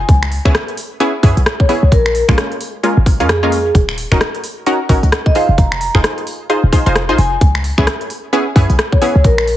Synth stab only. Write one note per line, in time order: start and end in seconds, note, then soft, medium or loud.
0.45 0.54 B3 medium
0.45 0.54 C#4 medium
0.45 0.54 E4 medium
0.45 0.54 G#4 medium
1.00 1.13 B3 medium
1.00 1.13 C#4 medium
1.00 1.13 E4 medium
1.00 1.13 G#4 loud
1.23 1.41 B3 medium
1.23 1.41 C#4 medium
1.23 1.41 E4 medium
1.23 1.41 G#4 loud
1.69 1.82 B3 medium
1.69 1.82 C#4 medium
1.69 1.82 E4 medium
1.69 1.82 G#4 loud
2.29 2.81 G#3 medium
2.29 2.81 A#3 medium
2.29 2.81 C#4 medium
2.29 2.81 F4 medium
2.83 2.96 G#3 medium
2.83 2.96 A#3 medium
2.83 2.96 C#4 medium
2.83 2.96 F4 medium
3.20 3.28 G#3 medium
3.20 3.28 A#3 medium
3.20 3.28 C#4 medium
3.20 3.28 F4 loud
3.43 3.59 G#3 loud
3.43 3.59 A#3 medium
3.43 3.59 C#4 medium
3.43 3.59 F4 loud
4.12 4.20 C#4 medium
4.12 4.20 D#4 medium
4.12 4.20 F#4 medium
4.12 4.20 A#4 loud
4.66 4.79 C#4 medium
4.66 4.79 D#4 medium
4.66 4.79 F#4 medium
4.66 4.79 A#4 loud
4.90 5.08 C#4 medium
4.90 5.08 D#4 medium
4.90 5.08 F#4 medium
4.90 5.08 A#4 loud
5.35 5.48 D#4 medium
5.35 5.48 F4 medium
5.35 5.48 G#4 medium
5.35 5.48 C5 loud
5.95 6.47 D#4 medium
5.95 6.47 F4 medium
5.95 6.47 G#4 medium
5.95 6.48 C5 medium
6.50 6.62 D#4 medium
6.50 6.62 F4 medium
6.50 6.62 G#4 medium
6.50 6.62 C5 medium
6.72 6.84 D#4 medium
6.72 6.84 F4 medium
6.72 6.84 G#4 medium
6.72 6.84 C5 medium
6.86 7.02 D#4 medium
6.86 7.02 F4 medium
6.86 7.02 G#4 medium
6.86 7.02 C5 loud
7.09 7.18 D#4 loud
7.09 7.18 F4 medium
7.09 7.18 G#4 medium
7.09 7.18 C5 loud
7.78 7.86 B3 medium
7.78 7.86 C#4 medium
7.78 7.86 E4 medium
7.78 7.86 G#4 loud
8.33 8.46 B3 loud
8.33 8.46 C#4 medium
8.33 8.46 E4 medium
8.33 8.46 G#4 loud
8.56 8.74 B3 medium
8.56 8.74 C#4 medium
8.56 8.74 E4 medium
8.56 8.74 G#4 loud
9.02 9.14 B3 medium
9.02 9.14 C#4 medium
9.02 9.14 E4 medium
9.02 9.14 G#4 loud